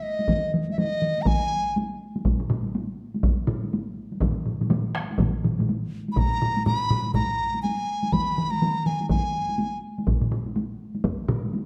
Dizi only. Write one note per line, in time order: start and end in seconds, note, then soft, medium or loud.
0.03 0.52 D#5 medium
0.72 0.80 E5 medium
0.78 1.23 D#5 medium
1.22 1.29 A#5 medium
1.27 1.76 G#5 medium
6.12 6.20 B5 medium
6.18 6.66 A#5 medium
6.66 7.12 B5 loud
7.14 7.60 A#5 medium
7.62 8.14 G#5 medium
8.13 8.52 B5 medium
8.51 8.88 A#5 medium
8.86 9.09 G#5 medium
9.10 9.79 G#5 medium